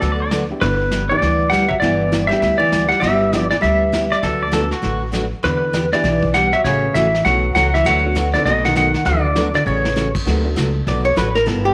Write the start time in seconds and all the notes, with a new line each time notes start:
Already playing: B3 D4 F#4 A4
0.01 D2 D3 F#3 A3 D4 F#4 A4 B4, brush sweep, kick, snare
0.12 D5
0.22 D5
0.31 D3 F#3 A3 D4 F#4 B4, kick, snare, hi-hat pedal
0.50 B3 D4 E4 G4
0.61 G1 D3 G3 B3 E4 G4 B4, brush sweep, kick, snare
0.91 G3 B3 E4 G4, kick, snare, hi-hat pedal
1.09 E3 B3 D4 E4 G4 D5
1.22 D2 G3 B3 E4 G4, brush sweep, kick, snare
1.50 G3 B3 F#5, kick, snare, hi-hat pedal
1.54 E4 G4
1.68 F#3 E5, kick
1.80 G1 E3 G3 B3 E4 G4 D5, brush sweep, kick, snare
2.12 G3 B3 E4 G4, kick, snare, hi-hat pedal
2.27 G3 B3 D4 E5, snare
2.32 E4 G4
2.42 D2 G3 B3 E4 G4, brush sweep, kick, snare
2.58 E3 D5
2.72 G3 B3 E4 G4, kick, snare, hi-hat pedal
2.88 G3 F#5, snare
3.00 G1 G3 B3 E4 G4 E5, brush sweep, kick, snare
3.32 G3 B3 D4 E4 G4, kick, snare, hi-hat pedal
3.51 E3 D5, snare
3.61 D2 G3 B3 E4 G4 E5, brush sweep, kick, snare
3.92 G3 B3 E4 G4, kick, snare, hi-hat pedal
4.12 D5, snare
4.23 D2 D3 F#3 A3 D4 F#4 A4 B4, brush sweep, kick, snare
4.43 D5
4.51 D3 F#3 A3 B3 D4 F#4 A4 B4, kick, snare, hi-hat pedal
4.71 F#4, snare
4.82 A1 D3 F#3 A3 D4 F#4 B4, brush sweep, kick, snare
5.12 D3 F#3 A3 D4 F#4 B4, kick, snare, hi-hat pedal
5.43 E2 D3 E3 B3 D4 G4 B4, brush sweep, kick, snare
5.73 E3 B3 D4 G4, kick, snare, hi-hat pedal
5.92 E3 B3 D4 E4 G4 D5, snare
6.03 B1 E3 B3 D4 G4, brush sweep, kick, snare
6.23 kick
6.34 E3 G3 B3 D4 G4 F#5, kick, snare, hi-hat pedal
6.52 F#3 E5, snare
6.64 A1 C#3 E3 A3 C#4 F#4 C#5, brush sweep, kick, snare
6.93 A1 C#3 E3 A3 C#4 E4 F#4 E5, kick, snare, hi-hat pedal
7.14 snare
7.25 B1 C#3 E3 F#3 A3 C#4 F#4 F#5, brush sweep, kick, snare
7.55 C#2 C#3 E3 F#3 A3 C#4 F#4 F#5, kick, snare, hi-hat pedal
7.74 E3 E5, snare
7.85 D2 D3 F#3 A3 D4 F#4 B4 F#5, brush sweep, kick, snare
8.04 A3 B3 D4 F#4
8.15 D3 F#3 A3 D4 F#4 B4, kick, snare, hi-hat pedal
8.34 D3 B3 C4 D#4 A4 D5, snare
8.46 B1 B2 F#3 A3 D#4 F#4 D#5, brush sweep, kick, snare
8.65 D#3 F#5, snare
8.75 B2 D#3 F#3 A3 D#4 F#4 F#5, kick, snare, hi-hat pedal
8.94 snare
9.05 D2 D3 F#3 A3 D4 F#4 B4 D5, brush sweep, kick, snare
9.34 D3 F#3 A3 B3 D4 F#4 A4 B4, kick, snare, hi-hat pedal
9.54 D3 D5, snare
9.66 A1 C#3 E3 A3 C#4 F#4 C#5
9.85 snare
9.96 C#3 E3 A3 C#4 F#4, snare, hi-hat pedal
10.15 kick, crash
10.26 D2 D3 F#3 A3 A#3 C4 D4 D#4 F#4 G4 A#4 B4, brush sweep, kick, snare
10.43 A3 B3 D4 F#4 A4
10.56 C#2 D3 F#3 A3 D4 F#4 B4, kick, snare, hi-hat pedal
10.87 B1 D3 F#3 A3 D4 F#4 B4 D5, brush sweep, kick, snare
11.05 C#5
11.16 A1 D3 F#3 A3 D4 F#4 B4, kick, snare, hi-hat pedal
11.35 A#4, snare
11.45 G1 G3 B3 E4 G4 A4, brush sweep, kick, snare
11.65 G4